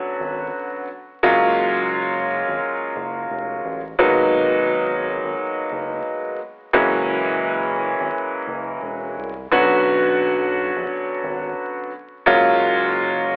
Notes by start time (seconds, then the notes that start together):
Already playing: D3 F#3 B3 C#4 F#4
0.20 G#1
1.23 F#1 F#3 G#3 A#3 C#4 F4
2.48 G#1
2.96 F#1
3.30 F1
3.65 A1
3.99 G#1 F#3 G#3 A#3 B3 D#4
5.24 G#1
5.72 F#1
6.73 F#1 E3 F#3 G#3 A#3 C#4
8.00 G#1
8.48 F#1
8.82 E1
9.16 C2
9.51 B1 D3 F#3 B3 C#4 F#4
10.76 A#1
11.24 G#1
12.26 F#1 F#3 G#3 A#3 C#4 F4